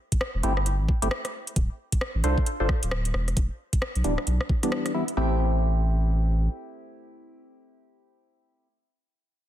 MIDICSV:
0, 0, Header, 1, 4, 480
1, 0, Start_track
1, 0, Key_signature, 0, "minor"
1, 0, Tempo, 451128
1, 1662, Time_signature, 4, 2, 24, 8
1, 10095, End_track
2, 0, Start_track
2, 0, Title_t, "Synth stab"
2, 0, Program_c, 0, 62
2, 462, Note_on_c, 0, 57, 92
2, 462, Note_on_c, 0, 60, 82
2, 463, Note_on_c, 0, 64, 81
2, 463, Note_on_c, 0, 67, 104
2, 561, Note_off_c, 0, 57, 0
2, 561, Note_off_c, 0, 60, 0
2, 561, Note_off_c, 0, 64, 0
2, 561, Note_off_c, 0, 67, 0
2, 1087, Note_on_c, 0, 57, 74
2, 1087, Note_on_c, 0, 60, 68
2, 1087, Note_on_c, 0, 64, 69
2, 1087, Note_on_c, 0, 67, 80
2, 1151, Note_off_c, 0, 57, 0
2, 1151, Note_off_c, 0, 60, 0
2, 1151, Note_off_c, 0, 64, 0
2, 1151, Note_off_c, 0, 67, 0
2, 2383, Note_on_c, 0, 62, 85
2, 2383, Note_on_c, 0, 65, 77
2, 2383, Note_on_c, 0, 69, 80
2, 2383, Note_on_c, 0, 72, 96
2, 2536, Note_off_c, 0, 62, 0
2, 2536, Note_off_c, 0, 69, 0
2, 2536, Note_off_c, 0, 72, 0
2, 2537, Note_off_c, 0, 65, 0
2, 2768, Note_on_c, 0, 62, 76
2, 2768, Note_on_c, 0, 65, 67
2, 2768, Note_on_c, 0, 69, 68
2, 2768, Note_on_c, 0, 72, 82
2, 2875, Note_off_c, 0, 62, 0
2, 2875, Note_off_c, 0, 65, 0
2, 2875, Note_off_c, 0, 69, 0
2, 2875, Note_off_c, 0, 72, 0
2, 4302, Note_on_c, 0, 52, 93
2, 4302, Note_on_c, 0, 55, 84
2, 4302, Note_on_c, 0, 59, 85
2, 4302, Note_on_c, 0, 62, 100
2, 4401, Note_off_c, 0, 52, 0
2, 4401, Note_off_c, 0, 55, 0
2, 4401, Note_off_c, 0, 59, 0
2, 4401, Note_off_c, 0, 62, 0
2, 4929, Note_on_c, 0, 52, 91
2, 4929, Note_on_c, 0, 55, 86
2, 4929, Note_on_c, 0, 59, 83
2, 4929, Note_on_c, 0, 62, 102
2, 5240, Note_off_c, 0, 52, 0
2, 5240, Note_off_c, 0, 55, 0
2, 5240, Note_off_c, 0, 59, 0
2, 5240, Note_off_c, 0, 62, 0
2, 5261, Note_on_c, 0, 52, 81
2, 5261, Note_on_c, 0, 55, 75
2, 5261, Note_on_c, 0, 59, 72
2, 5261, Note_on_c, 0, 64, 96
2, 5361, Note_off_c, 0, 52, 0
2, 5361, Note_off_c, 0, 55, 0
2, 5361, Note_off_c, 0, 59, 0
2, 5361, Note_off_c, 0, 64, 0
2, 5502, Note_on_c, 0, 57, 81
2, 5502, Note_on_c, 0, 60, 76
2, 5502, Note_on_c, 0, 64, 81
2, 5502, Note_on_c, 0, 67, 90
2, 9237, Note_off_c, 0, 57, 0
2, 9237, Note_off_c, 0, 60, 0
2, 9237, Note_off_c, 0, 64, 0
2, 9237, Note_off_c, 0, 67, 0
2, 10095, End_track
3, 0, Start_track
3, 0, Title_t, "Sub bass"
3, 0, Program_c, 1, 38
3, 369, Note_on_c, 1, 28, 88
3, 453, Note_off_c, 1, 28, 0
3, 464, Note_on_c, 1, 31, 93
3, 849, Note_on_c, 1, 33, 76
3, 865, Note_off_c, 1, 31, 0
3, 933, Note_off_c, 1, 33, 0
3, 1089, Note_on_c, 1, 31, 104
3, 1173, Note_off_c, 1, 31, 0
3, 1662, Note_on_c, 1, 26, 92
3, 1793, Note_off_c, 1, 26, 0
3, 2287, Note_on_c, 1, 33, 94
3, 2372, Note_off_c, 1, 33, 0
3, 2383, Note_on_c, 1, 36, 92
3, 2513, Note_off_c, 1, 36, 0
3, 2769, Note_on_c, 1, 31, 84
3, 2853, Note_off_c, 1, 31, 0
3, 3010, Note_on_c, 1, 26, 88
3, 3327, Note_off_c, 1, 26, 0
3, 3344, Note_on_c, 1, 28, 85
3, 3563, Note_off_c, 1, 28, 0
3, 3583, Note_on_c, 1, 28, 94
3, 3713, Note_off_c, 1, 28, 0
3, 4210, Note_on_c, 1, 35, 88
3, 4294, Note_off_c, 1, 35, 0
3, 4305, Note_on_c, 1, 26, 89
3, 4434, Note_off_c, 1, 26, 0
3, 4545, Note_on_c, 1, 35, 100
3, 4674, Note_off_c, 1, 35, 0
3, 5502, Note_on_c, 1, 33, 86
3, 6899, Note_off_c, 1, 33, 0
3, 10095, End_track
4, 0, Start_track
4, 0, Title_t, "Drums"
4, 128, Note_on_c, 9, 36, 55
4, 128, Note_on_c, 9, 42, 66
4, 222, Note_on_c, 9, 37, 100
4, 234, Note_off_c, 9, 42, 0
4, 235, Note_off_c, 9, 36, 0
4, 328, Note_off_c, 9, 37, 0
4, 462, Note_on_c, 9, 42, 67
4, 568, Note_off_c, 9, 42, 0
4, 607, Note_on_c, 9, 37, 61
4, 702, Note_on_c, 9, 42, 61
4, 714, Note_off_c, 9, 37, 0
4, 809, Note_off_c, 9, 42, 0
4, 942, Note_on_c, 9, 36, 92
4, 1049, Note_off_c, 9, 36, 0
4, 1089, Note_on_c, 9, 42, 64
4, 1182, Note_on_c, 9, 37, 105
4, 1195, Note_off_c, 9, 42, 0
4, 1288, Note_off_c, 9, 37, 0
4, 1328, Note_on_c, 9, 37, 53
4, 1328, Note_on_c, 9, 42, 52
4, 1434, Note_off_c, 9, 37, 0
4, 1434, Note_off_c, 9, 42, 0
4, 1567, Note_on_c, 9, 42, 34
4, 1662, Note_off_c, 9, 42, 0
4, 1662, Note_on_c, 9, 36, 104
4, 1662, Note_on_c, 9, 42, 64
4, 1768, Note_off_c, 9, 42, 0
4, 1769, Note_off_c, 9, 36, 0
4, 2047, Note_on_c, 9, 42, 62
4, 2048, Note_on_c, 9, 36, 50
4, 2141, Note_on_c, 9, 37, 98
4, 2154, Note_off_c, 9, 42, 0
4, 2155, Note_off_c, 9, 36, 0
4, 2248, Note_off_c, 9, 37, 0
4, 2381, Note_on_c, 9, 42, 64
4, 2487, Note_off_c, 9, 42, 0
4, 2528, Note_on_c, 9, 36, 93
4, 2622, Note_on_c, 9, 42, 58
4, 2635, Note_off_c, 9, 36, 0
4, 2728, Note_off_c, 9, 42, 0
4, 2862, Note_on_c, 9, 36, 93
4, 2862, Note_on_c, 9, 37, 61
4, 2968, Note_off_c, 9, 37, 0
4, 2969, Note_off_c, 9, 36, 0
4, 3008, Note_on_c, 9, 42, 65
4, 3101, Note_on_c, 9, 37, 104
4, 3114, Note_off_c, 9, 42, 0
4, 3207, Note_off_c, 9, 37, 0
4, 3247, Note_on_c, 9, 42, 53
4, 3342, Note_on_c, 9, 37, 59
4, 3354, Note_off_c, 9, 42, 0
4, 3449, Note_off_c, 9, 37, 0
4, 3489, Note_on_c, 9, 37, 28
4, 3489, Note_on_c, 9, 42, 36
4, 3582, Note_on_c, 9, 36, 101
4, 3583, Note_off_c, 9, 42, 0
4, 3583, Note_on_c, 9, 42, 66
4, 3595, Note_off_c, 9, 37, 0
4, 3689, Note_off_c, 9, 36, 0
4, 3689, Note_off_c, 9, 42, 0
4, 3968, Note_on_c, 9, 36, 54
4, 3968, Note_on_c, 9, 42, 61
4, 4062, Note_on_c, 9, 37, 108
4, 4074, Note_off_c, 9, 42, 0
4, 4075, Note_off_c, 9, 36, 0
4, 4169, Note_off_c, 9, 37, 0
4, 4208, Note_on_c, 9, 42, 36
4, 4302, Note_off_c, 9, 42, 0
4, 4302, Note_on_c, 9, 42, 64
4, 4408, Note_off_c, 9, 42, 0
4, 4448, Note_on_c, 9, 37, 62
4, 4542, Note_on_c, 9, 42, 58
4, 4554, Note_off_c, 9, 37, 0
4, 4648, Note_off_c, 9, 42, 0
4, 4688, Note_on_c, 9, 37, 54
4, 4782, Note_on_c, 9, 36, 90
4, 4794, Note_off_c, 9, 37, 0
4, 4888, Note_off_c, 9, 36, 0
4, 4928, Note_on_c, 9, 37, 30
4, 4928, Note_on_c, 9, 42, 60
4, 5021, Note_off_c, 9, 37, 0
4, 5021, Note_on_c, 9, 37, 104
4, 5034, Note_off_c, 9, 42, 0
4, 5128, Note_off_c, 9, 37, 0
4, 5167, Note_on_c, 9, 37, 55
4, 5167, Note_on_c, 9, 42, 50
4, 5274, Note_off_c, 9, 37, 0
4, 5274, Note_off_c, 9, 42, 0
4, 5407, Note_on_c, 9, 42, 34
4, 5513, Note_off_c, 9, 42, 0
4, 10095, End_track
0, 0, End_of_file